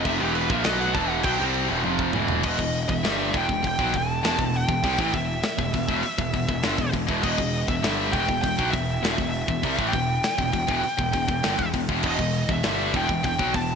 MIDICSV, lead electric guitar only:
0, 0, Header, 1, 2, 480
1, 0, Start_track
1, 0, Key_signature, 1, "minor"
1, 0, Tempo, 598802
1, 46, Time_signature, 4, 2, 24, 8
1, 11023, End_track
2, 0, Start_track
2, 0, Title_t, "Lead electric guitar"
2, 0, Program_c, 0, 29
2, 48, Note_on_c, 0, 76, 96
2, 161, Note_on_c, 0, 67, 61
2, 163, Note_off_c, 0, 76, 0
2, 279, Note_off_c, 0, 67, 0
2, 285, Note_on_c, 0, 71, 97
2, 397, Note_on_c, 0, 76, 112
2, 402, Note_off_c, 0, 71, 0
2, 510, Note_off_c, 0, 76, 0
2, 514, Note_on_c, 0, 75, 98
2, 632, Note_on_c, 0, 78, 81
2, 635, Note_off_c, 0, 75, 0
2, 754, Note_off_c, 0, 78, 0
2, 758, Note_on_c, 0, 81, 107
2, 878, Note_off_c, 0, 81, 0
2, 878, Note_on_c, 0, 78, 85
2, 989, Note_off_c, 0, 78, 0
2, 989, Note_on_c, 0, 79, 109
2, 1137, Note_off_c, 0, 79, 0
2, 1958, Note_on_c, 0, 75, 86
2, 2293, Note_off_c, 0, 75, 0
2, 2324, Note_on_c, 0, 76, 90
2, 2692, Note_off_c, 0, 76, 0
2, 2701, Note_on_c, 0, 79, 100
2, 2934, Note_off_c, 0, 79, 0
2, 2944, Note_on_c, 0, 79, 96
2, 3155, Note_off_c, 0, 79, 0
2, 3182, Note_on_c, 0, 81, 115
2, 3660, Note_off_c, 0, 81, 0
2, 3663, Note_on_c, 0, 79, 105
2, 4122, Note_on_c, 0, 76, 85
2, 4144, Note_off_c, 0, 79, 0
2, 5528, Note_off_c, 0, 76, 0
2, 5796, Note_on_c, 0, 75, 94
2, 6157, Note_off_c, 0, 75, 0
2, 6160, Note_on_c, 0, 76, 99
2, 6513, Note_on_c, 0, 79, 105
2, 6530, Note_off_c, 0, 76, 0
2, 6737, Note_off_c, 0, 79, 0
2, 6746, Note_on_c, 0, 79, 114
2, 6975, Note_off_c, 0, 79, 0
2, 6977, Note_on_c, 0, 76, 99
2, 7442, Note_off_c, 0, 76, 0
2, 7451, Note_on_c, 0, 76, 90
2, 7924, Note_on_c, 0, 79, 94
2, 7961, Note_off_c, 0, 76, 0
2, 9353, Note_off_c, 0, 79, 0
2, 9673, Note_on_c, 0, 75, 85
2, 10030, Note_off_c, 0, 75, 0
2, 10035, Note_on_c, 0, 76, 92
2, 10357, Note_off_c, 0, 76, 0
2, 10395, Note_on_c, 0, 79, 87
2, 10616, Note_off_c, 0, 79, 0
2, 10626, Note_on_c, 0, 79, 112
2, 10863, Note_off_c, 0, 79, 0
2, 10866, Note_on_c, 0, 81, 113
2, 11023, Note_off_c, 0, 81, 0
2, 11023, End_track
0, 0, End_of_file